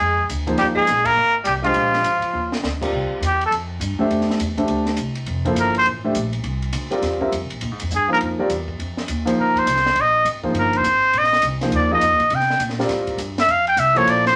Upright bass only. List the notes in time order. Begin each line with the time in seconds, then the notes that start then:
0.00 F2
0.29 D2
0.59 D#2
0.88 A#1
1.17 G#1
1.46 C2
1.75 A#1
2.04 G#1
2.22 muted upright bass stroke
2.34 D#2
2.63 D2
2.92 C2
3.10 muted upright bass stroke
3.21 E2
3.51 F2
3.80 G2
3.99 muted upright bass stroke
4.10 F2
4.39 E2
4.69 D2
4.99 C2
5.27 F1
5.55 G1
5.85 A1
6.15 A#1
6.44 C2
6.73 D2
6.91 muted upright bass stroke
7.02 E2
7.32 F2
7.42 C2
7.52 A#1
7.62 A#2
7.71 G#2
7.82 F2
7.92 G2
8.21 F2
8.50 E2
8.79 F2
9.09 D#2
9.37 D2
9.56 muted upright bass stroke
9.66 C2
9.95 A#1
10.25 G#1
10.54 G1
10.84 G#1
11.14 A#1
11.43 C2
11.72 D#2
12.01 F2
12.11 D#2
12.20 A#1
12.31 C3
12.59 A#2
12.88 A2
13.17 G2
13.47 F2
13.76 C2
14.06 A#1